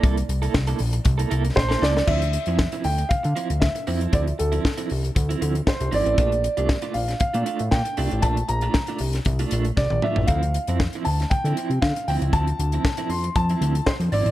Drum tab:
CC |----------------|x---------------|----------------|----------------|
HH |xxxx-xoxxxxx----|-xxx-xoxxxxx-xox|xxxx-xoxxxxx-xox|xxxx-xoxxxxx-xox|
SD |----o-------oooo|----o-------o---|----o-------o---|----o--o----o---|
T1 |----------------|----------------|----------------|----------------|
T2 |----------------|----------------|----------------|----------------|
FT |----------------|----------------|----------------|----------------|
BD |o---o---o---o---|o---o---o---o---|o---o---o---o---|o---o---o---o---|

CC |----------------|----------------|----------------|
HH |xxxx-xoxxxxx----|xxxx-xoxxxxx-xox|xxxx-xoxxxxx-xox|
SD |----o--o----o---|----o--o----o---|----o-------o---|
T1 |-------------o--|----------------|----------------|
T2 |--------------o-|----------------|----------------|
FT |---------------o|----------------|----------------|
BD |o---o---o---o---|o---o---o---o---|o---o---o---o---|